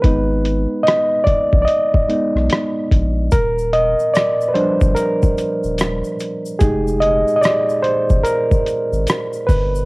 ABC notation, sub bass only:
X:1
M:4/4
L:1/16
Q:"Swing 16ths" 1/4=73
K:Eb
V:1 name="Sub bass" clef=bass
A,,,3 z4 B,,, z3 _C,, z2 B,,,2 | E,,,3 z4 G,,, z3 E,,,2 z3 | F,,,3 z4 G,,, z3 A,,, z2 G,,,2 |]